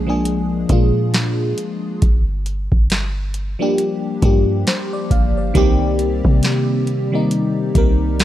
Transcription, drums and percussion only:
0.25 closed hi-hat medium
0.69 kick medium
0.69 closed hi-hat medium
1.14 snare loud
1.14 closed hi-hat medium
1.58 closed hi-hat medium
2.02 kick loud
2.02 closed hi-hat medium
2.46 closed hi-hat medium
2.72 kick loud
2.90 snare loud
2.90 closed hi-hat medium
3.34 closed hi-hat medium
3.78 closed hi-hat medium
4.22 kick loud
4.22 closed hi-hat medium
4.67 snare loud
4.67 closed hi-hat medium
5.11 kick medium
5.11 closed hi-hat medium
5.55 kick loud
5.55 closed hi-hat medium
5.99 closed hi-hat medium
6.25 kick loud
6.43 snare loud
6.43 closed hi-hat medium
6.87 closed hi-hat medium
7.31 closed hi-hat medium
7.75 kick medium
7.75 closed hi-hat medium
8.20 snare loud
8.20 closed hi-hat medium

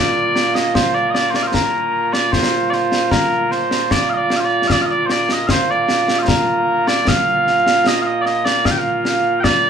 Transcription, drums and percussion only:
0.36 snare medium
0.55 snare medium
0.75 concert bass drum medium
0.75 snare loud
1.15 snare medium
1.34 snare medium
1.54 concert bass drum soft
1.54 snare medium
2.14 snare medium
2.33 concert bass drum medium
2.33 snare medium
2.72 snare soft
2.92 snare medium
3.11 concert bass drum medium
3.11 snare medium
3.51 snare soft
3.71 snare medium
3.91 concert bass drum medium
3.91 snare medium
4.30 snare medium
4.70 concert bass drum medium
4.70 snare loud
5.10 snare medium
5.29 snare medium
5.49 concert bass drum medium
5.49 snare loud
5.89 snare medium
6.08 snare medium
6.28 concert bass drum medium
6.28 snare loud
6.88 snare medium
7.07 concert bass drum medium
7.07 snare loud
7.47 snare soft
7.67 snare medium
7.87 snare loud
8.26 snare soft
8.46 snare medium
8.65 concert bass drum medium
8.65 snare medium
9.05 snare medium
9.44 concert bass drum medium
9.44 snare medium

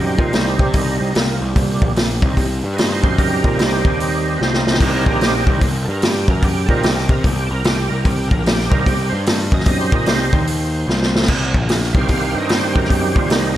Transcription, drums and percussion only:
0.19 kick medium
0.33 snare loud
0.33 open hi-hat medium
0.59 kick loud
0.73 kick medium
0.73 open hi-hat medium
1.15 snare loud
1.15 open hi-hat medium
1.56 kick loud
1.56 open hi-hat medium
1.82 kick medium
1.96 snare loud
1.96 open hi-hat medium
2.22 kick loud
2.37 kick medium
2.37 open hi-hat medium
2.78 snare loud
2.78 open hi-hat medium
3.04 kick loud
3.18 kick loud
3.18 open hi-hat medium
3.44 kick loud
3.59 snare loud
3.59 open hi-hat medium
3.85 kick loud
4.00 open hi-hat medium
4.41 snare medium
4.54 snare medium
4.67 snare medium
4.74 snare medium
4.80 kick loud
4.80 open hi-hat medium
4.80 crash medium
5.06 kick loud
5.21 snare loud
5.21 open hi-hat medium
5.47 kick loud
5.61 kick medium
5.61 open hi-hat medium
6.02 snare loud
6.02 open hi-hat medium
6.28 kick loud
6.42 kick loud
6.42 open hi-hat medium
6.69 kick loud
6.83 snare loud
6.83 open hi-hat medium
6.98 snare soft
7.09 kick loud
7.24 kick medium
7.24 open hi-hat medium
7.64 snare loud
7.64 open hi-hat medium
8.05 kick loud
8.05 open hi-hat medium
8.31 kick loud
8.46 snare loud
8.46 open hi-hat medium
8.60 snare soft
8.72 kick loud
8.86 kick medium
8.86 open hi-hat medium
9.26 snare loud
9.26 open hi-hat medium
9.52 kick loud
9.60 snare soft
9.66 kick loud
9.66 open hi-hat medium
9.92 kick loud
10.06 snare loud
10.06 open hi-hat medium
10.33 kick loud
10.47 open hi-hat medium
10.89 snare medium
11.03 snare medium
11.16 snare medium
11.22 snare medium
11.28 kick loud
11.28 crash loud
11.54 kick loud
11.69 snare loud
11.69 open hi-hat medium
11.83 snare soft
11.95 kick loud
12.08 kick medium
12.08 open hi-hat medium
12.49 snare loud
12.49 open hi-hat medium
12.76 kick medium
12.85 snare soft
12.90 kick loud
12.90 open hi-hat medium
13.16 kick loud
13.30 snare loud
13.30 open hi-hat medium

